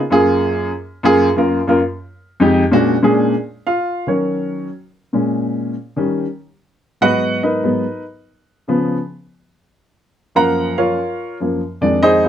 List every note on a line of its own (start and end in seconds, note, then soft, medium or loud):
0.10 0.69 F#2 medium
0.10 0.70 A#3 medium
0.10 0.70 F4 medium
0.10 0.70 G#4 loud
1.03 1.26 F#2 loud
1.03 1.26 A#3 medium
1.03 1.27 F4 medium
1.03 1.27 G#4 loud
1.36 1.58 F#2 medium
1.36 1.58 A#3 medium
1.36 1.59 F4 medium
1.36 1.59 A#4 medium
1.67 1.78 F#2 medium
1.67 1.78 A#3 medium
1.67 1.79 F4 medium
1.67 1.79 A#4 medium
2.40 2.61 F2 loud
2.40 2.62 G#3 medium
2.40 2.62 D#4 medium
2.40 2.62 G4 medium
2.71 2.94 A#2 medium
2.71 2.94 G#3 medium
2.71 2.94 C#4 medium
2.71 2.95 D4 medium
2.71 2.95 F#4 loud
3.03 3.33 A#2 medium
3.03 3.32 G#3 medium
3.03 3.33 C#4 medium
3.03 3.33 D4 medium
3.03 3.33 G#4 medium
3.67 4.06 F4 medium
3.67 4.05 F5 medium
4.07 4.67 D#3 soft
4.07 4.68 F#3 medium
4.07 4.68 C#4 medium
4.07 4.67 F#4 soft
4.07 4.67 A#4 soft
4.07 4.67 C#5 medium
5.13 5.73 A#2 soft
5.13 5.73 G#3 soft
5.13 5.73 C#4 medium
5.96 6.24 D#3 medium
5.96 6.25 G3 medium
5.96 6.25 C#4 medium
7.01 7.62 G#2 medium
7.01 7.62 F#3 medium
7.01 7.62 B3 medium
7.01 7.41 F#4 medium
7.01 7.41 B4 medium
7.01 7.40 D#5 medium
7.01 7.40 F#5 loud
7.43 8.02 D#4 medium
7.43 8.02 A#4 medium
7.43 8.02 B4 medium
7.43 8.02 D#5 medium
7.63 7.82 G#2 soft
7.63 7.83 F#3 soft
7.63 7.83 B3 medium
8.68 8.96 C#3 medium
8.68 8.96 F3 medium
8.68 8.96 B3 medium
10.35 10.95 F#2 medium
10.35 10.95 F3 medium
10.35 10.96 A#3 medium
10.35 10.75 A#4 medium
10.35 10.75 F5 medium
10.35 10.75 F#5 medium
10.35 10.75 A#5 loud
10.78 11.37 F4 medium
10.78 11.37 A#4 medium
10.78 11.37 C#5 medium
10.78 11.36 F5 medium
11.40 11.59 F#2 soft
11.40 11.60 F3 soft
11.40 11.60 A#3 medium
11.81 12.29 F2 medium
11.81 12.29 D#3 soft
11.81 12.29 G#3 medium
11.81 12.03 D4 medium
11.81 12.02 D5 medium
12.03 12.23 D#4 medium
12.03 12.23 G#4 medium
12.03 12.23 C5 medium
12.03 12.23 D#5 loud
12.24 12.29 C4 medium
12.24 12.29 F4 medium
12.24 12.29 G#4 medium
12.24 12.29 C5 medium